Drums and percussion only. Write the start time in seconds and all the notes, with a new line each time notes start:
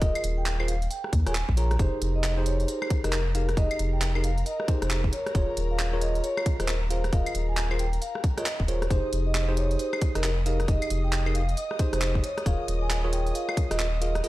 0.02 kick, closed hi-hat
0.15 closed hi-hat, claves
0.24 closed hi-hat
0.46 clap, closed hi-hat
0.60 claves
0.68 closed hi-hat
0.82 closed hi-hat
0.91 closed hi-hat
1.04 cross-stick
1.13 kick, closed hi-hat
1.27 cross-stick, closed hi-hat
1.35 clap, closed hi-hat
1.49 kick
1.57 closed hi-hat
1.71 cross-stick, closed hi-hat
1.79 kick, closed hi-hat
2.02 closed hi-hat
2.24 clap, closed hi-hat
2.46 closed hi-hat
2.60 closed hi-hat
2.68 closed hi-hat
2.82 cross-stick, claves
2.90 kick, closed hi-hat
3.04 cross-stick, closed hi-hat
3.13 clap, closed hi-hat
3.35 closed hi-hat
3.49 cross-stick, closed hi-hat
3.57 kick, closed hi-hat
3.71 closed hi-hat, claves
3.79 closed hi-hat
4.02 clap, closed hi-hat
4.15 claves
4.24 closed hi-hat
4.38 closed hi-hat
4.46 closed hi-hat
4.60 cross-stick
4.68 kick, closed hi-hat
4.82 cross-stick, closed hi-hat
4.90 clap, closed hi-hat
5.04 kick
5.13 closed hi-hat
5.26 cross-stick, closed hi-hat
5.35 kick, closed hi-hat
5.57 closed hi-hat
5.79 clap, closed hi-hat
6.01 closed hi-hat
6.15 closed hi-hat
6.24 closed hi-hat
6.37 cross-stick, claves
6.46 kick, closed hi-hat
6.60 cross-stick, closed hi-hat
6.68 clap, closed hi-hat
6.90 closed hi-hat
7.04 cross-stick, closed hi-hat
7.13 kick, closed hi-hat
7.26 closed hi-hat, claves
7.35 closed hi-hat
7.57 clap, closed hi-hat
7.71 claves
7.79 closed hi-hat
7.93 closed hi-hat
8.02 closed hi-hat
8.15 cross-stick
8.24 kick, closed hi-hat
8.38 cross-stick, closed hi-hat
8.46 clap, closed hi-hat
8.60 kick
8.68 closed hi-hat
8.82 cross-stick, closed hi-hat
8.90 kick, closed hi-hat
9.13 closed hi-hat
9.35 clap, closed hi-hat
9.57 closed hi-hat
9.71 closed hi-hat
9.79 closed hi-hat
9.93 cross-stick, claves
10.02 kick, closed hi-hat
10.15 cross-stick, closed hi-hat
10.24 clap, closed hi-hat
10.46 closed hi-hat
10.60 cross-stick, closed hi-hat
10.68 kick, closed hi-hat
10.82 closed hi-hat, claves
10.90 closed hi-hat
11.13 clap, closed hi-hat
11.26 claves
11.35 closed hi-hat
11.49 closed hi-hat
11.57 closed hi-hat
11.71 cross-stick
11.79 kick, closed hi-hat
11.93 cross-stick, closed hi-hat
12.01 clap, closed hi-hat
12.15 kick
12.24 closed hi-hat
12.38 cross-stick, closed hi-hat
12.46 kick, closed hi-hat
12.68 closed hi-hat
12.90 clap, closed hi-hat
13.13 closed hi-hat
13.27 closed hi-hat
13.35 closed hi-hat
13.49 cross-stick, claves
13.57 kick, closed hi-hat
13.71 cross-stick, closed hi-hat
13.79 clap, closed hi-hat
14.02 closed hi-hat
14.15 cross-stick, closed hi-hat
14.24 closed hi-hat